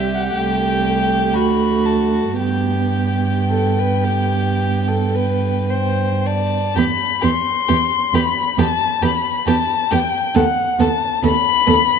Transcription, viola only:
Already playing: G3
0.38 A3
2.41 B3
6.78 B3
7.23 B3
7.69 B3
8.14 B3
8.58 B3
9.03 B3
9.48 B3
9.92 B3
10.35 B3
10.79 B3
11.23 B3
11.67 B3

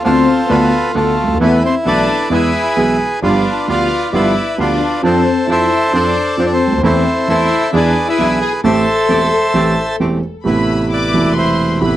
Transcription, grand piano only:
0.05 D2 D3 A3 B3 F4
0.50 D2 D3 A3 B3 F4
0.95 D2 D3 A3 B3 F4
1.24 C#2
1.28 D2
1.34 D#2
1.40 E2 E3 A3 B3 A4
1.85 B1 B2 E3 A3 B3 A4
2.30 E2 E3 G#3 B3 G#4
2.76 B1 B2 E3 G#3 B3 G#4
3.22 G1 G2 F3 B3 D4 G4
3.68 D2 D3 F3 B3 D4 G4
4.13 G1 G2 F3 B3 D4 G4
4.58 D2 D3 F3 B3 D4 G4
5.03 F2 F3 C4 D4 A4
5.47 F2 F3 C4 D4 A4
5.93 F2 F3 C4 D4 A4
6.37 F2 F3 C4 D4 A4
6.67 C#2
6.72 D2
6.78 D#2
6.83 E2 E3 A3 C4 A4
7.28 E2 E3 A3 C4 A4
7.73 E2 E3 B3 D4 G#4
8.18 B1 B2 E3 B3 D4 G#4
8.64 A1 A2 E3 A3 C4 G4
9.08 E1 E2 E3 A3 C4 G4
9.54 A1 A2 E3 A3 C4 G4
10.00 E1 E2 E3 A3 C4 G4
10.44 A1 A2 C3 A3 B3 E4
11.12 E1 E2 B2 C3 A3 E4
11.80 A1 A2 C3 A3 B3 E4

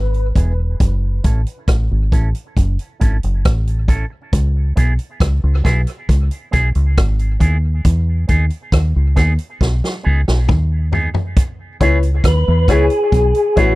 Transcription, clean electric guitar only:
0.35 B3 E4 G#4
1.24 C#4 E4 A4
2.12 C#4 E4 A4
3.00 C#4 E4 A4
3.88 C#4 E4 A4
4.10 muted clean electric guitar stroke
4.76 B3 E4 G#4
5.63 B3 E4 G#4
6.51 B3 E4 G#4
7.39 B3 E4 G#4
8.28 B3 D#4 G#4
9.15 B3 D#4 G#4
10.03 B3 D#4 G#4
10.92 B3 D#4 G#4
11.81 B3 E4 G#4
12.68 B3 E4 G#4
13.56 B3 E4 G#4

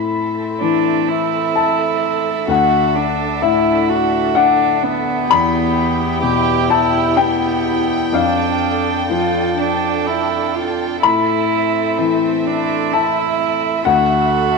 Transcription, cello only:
0.61 D4
1.09 E4
2.49 F#4
2.95 D4
3.42 E4
3.89 F#4
4.36 D4
4.84 B3
6.23 G4
6.70 E4
7.18 B3
8.14 D4
9.11 F4
9.60 D4
10.06 E4
10.55 F4
11.03 E4
11.98 C4
12.46 D4
12.93 E4
13.86 F#4

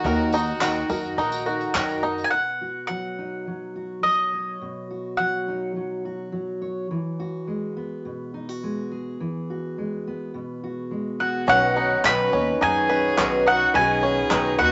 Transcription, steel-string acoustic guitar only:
2.33 B2
2.61 F#4
2.89 F#3
3.19 D#4
3.47 F#3
3.76 F#4
4.04 F#3
4.33 C#5
4.62 B2
4.90 F#4
5.19 F#3
5.48 D#4
5.76 F#3
6.05 F#4
6.32 F#3
6.62 C#5
6.91 E3
7.20 F#4
7.47 G#3
7.77 B3
8.05 B2
8.34 D#4
8.49 F#4
8.64 G#3
8.92 G#4
9.20 E3
9.50 F#4
9.78 G#3
10.07 B3
10.34 B2
10.64 F#4
10.91 G#3
11.20 G#4

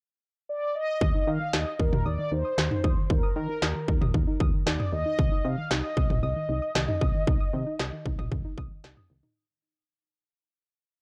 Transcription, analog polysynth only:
0.49 D5
0.75 D#5
1.27 F5
1.54 D#5
1.80 A#4
2.06 D5
2.32 C5
3.10 A#4
3.36 A#4
4.66 D5
4.93 D#5
5.45 F5
5.71 D#5
6.23 D#5

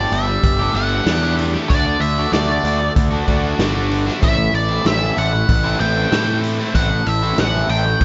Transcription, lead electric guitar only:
Already playing: D5
0.13 E5
0.75 F#5
1.69 D5
2.00 E5
2.33 D5
4.24 E5
4.55 D5
4.87 E5
5.18 F#5
5.80 G5
6.75 F#5
7.07 E5
7.39 F#5
7.70 G5

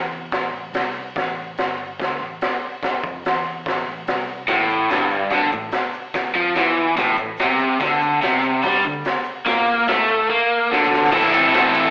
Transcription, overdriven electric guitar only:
4.48 A2
4.90 G2
5.31 D3
5.53 A2
6.16 muted overdriven electric guitar stroke
6.35 F3
6.56 E3
6.97 A2
7.18 A2
7.40 C3
7.80 D3
8.22 C3
8.63 G3
8.85 D3
9.46 A#3
9.89 A3
10.30 A#3
10.71 D3
11.12 A2 E3 C4 E4 A4
11.33 C4 E4 A4
11.53 E3 C4 E4 A4

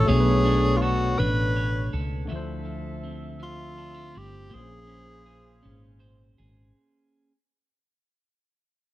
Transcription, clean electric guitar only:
Already playing: D4 A4
0.09 B3 C#5
0.45 D4
0.82 A4
1.20 D4
1.57 C#5
1.93 A4
2.29 D3 E4
2.65 F3
3.04 C4
3.40 F3
3.78 D4
3.94 E4
4.15 C4
4.50 A#3 C5
4.87 C#4
5.26 G#4
5.63 C#4
6.00 C5
6.38 G#4

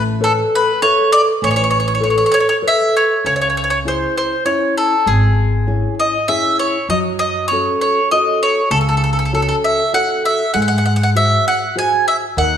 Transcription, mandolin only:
0.24 A4
0.55 B4
0.82 C#5
1.12 D5
1.44 C#5
1.51 C#5
1.56 C#5
1.64 C#5
1.71 C#5
1.80 C#5
1.88 C#5
1.95 C#5
2.04 C#5
2.10 C#5
2.18 C#5
2.26 C#5
2.32 C#5
2.40 C#5
2.49 C#5
2.68 E5
2.97 C#5
3.26 C#5
3.36 C#5
3.41 C#5
3.50 C#5
3.57 C#5
3.64 C#5
3.70 C#5
3.88 C5
4.17 C5
4.46 C#5
4.77 A4
5.07 G#4
6.00 D#5
6.28 E5
6.59 C#5
6.90 D#5
7.19 D#5
7.48 C#5
7.81 C#5
8.11 D#5
8.43 C#5
8.71 A4
8.81 A4
8.89 A4
8.97 A4
9.04 A4
9.13 A4
9.19 A4
9.25 A4
9.35 A4
9.42 A4
9.49 A4
9.64 E5
9.94 F#5
10.25 E5
10.54 F#5
10.62 F#5
10.68 F#5
10.78 F#5
10.86 F#5
10.96 F#5
11.03 F#5
11.16 E5
11.48 F#5
11.79 G#5
12.08 E5
12.38 F#5

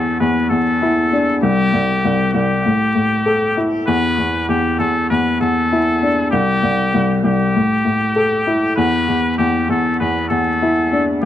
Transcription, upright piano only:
Already playing: E2
0.20 E2
0.50 E2
0.82 E4
1.13 D4
1.43 C2
1.73 C2
2.05 C2
2.34 C2
2.66 A2
2.95 A2
3.26 A4
3.57 E4
3.87 E2
4.18 E2
4.49 E2
4.79 E2
5.11 E2
5.40 E2
5.72 E4
6.03 D4
6.32 C2
6.63 C2
6.94 C2
7.24 C2
7.55 A2
7.85 A2
8.16 A4
8.47 E4
8.77 E2
9.08 E2
9.39 E2
9.69 E2
10.00 E2
10.30 E2
10.62 E4
10.92 D4

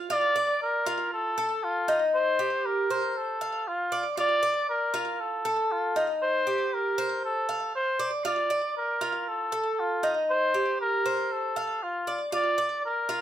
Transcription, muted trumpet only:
0.11 D5
0.62 A#4
1.13 A4
1.64 F4
2.15 C5
2.66 A#4
3.17 A4
3.68 F4
4.19 D5
4.69 A#4
5.20 A4
5.71 F4
6.22 C5
6.73 A#4
7.24 A4
7.75 C5
8.26 D5
8.77 A#4
9.28 A4
9.79 F4
10.30 C5
10.81 A#4
11.32 A4
11.83 F4
12.34 D5
12.85 A#4

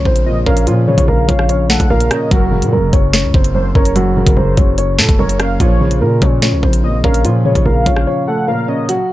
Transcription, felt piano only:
Already playing: A#2 C#3 F3
0.26 A#2
0.46 C#4
0.67 A#2
0.88 C#3
1.08 A#2
1.29 F3
1.90 A#2
2.11 C#4
2.31 F#2
2.52 C#3
2.72 F#2
2.93 F#3
3.55 F#2
3.75 C#4
3.96 F#2
4.17 C#3
4.37 F#2
4.58 F#3
5.19 F#2
5.40 C#4
5.60 A#2
5.81 C#3
6.01 A#2
6.22 F3
6.83 A#2
7.04 C#4
7.25 A#2
7.45 C#3
7.66 A#2
7.86 F3
8.48 A#2
8.68 C#4

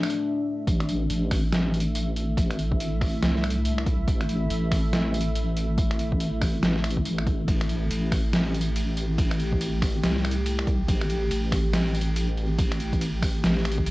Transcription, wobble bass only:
0.67 A1
1.10 A1
2.37 A1
3.23 C2
4.08 A1
4.50 A1
5.78 A1
6.63 A1
7.48 A1
7.91 A1
9.18 A1
10.03 C2
10.88 A1
11.31 A1
12.59 A1
13.44 A1
13.86 A1

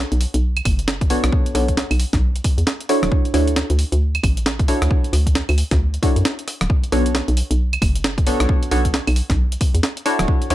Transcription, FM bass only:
0.12 B1
0.34 B1
0.65 F#1
1.24 B1
1.55 B1
1.91 B1
2.13 B1
2.58 E2
3.03 D1
3.34 D2
3.70 D2
3.92 D2
4.24 A1
4.82 D2
5.13 D2
5.49 D2
5.71 D2
6.16 F#2
6.61 D1
6.92 B1
7.28 B1
7.51 B1
7.82 F#1
8.40 B1
8.71 B1
9.07 B1
9.30 B1
9.74 E2
10.19 D1
10.50 D2

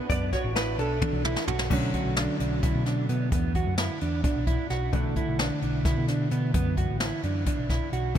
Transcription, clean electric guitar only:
0.10 B3
0.33 F#4
0.55 E4
0.79 D4
1.02 D4
1.25 E4
1.48 F#4
1.71 D4
1.94 F#4
2.17 D4
2.40 D4
2.63 E4
2.86 D4
3.09 B3
3.32 B3
3.55 F#4
3.78 E4
4.02 D4
4.24 D4
4.47 E4
4.70 F#4
4.93 D4
5.17 E4
5.40 D4
5.63 D4
5.85 E4
6.09 D4
6.32 B3
6.54 B3
6.78 F#4
7.01 E4
7.24 D4
7.47 D4
7.70 E4
7.93 F#4

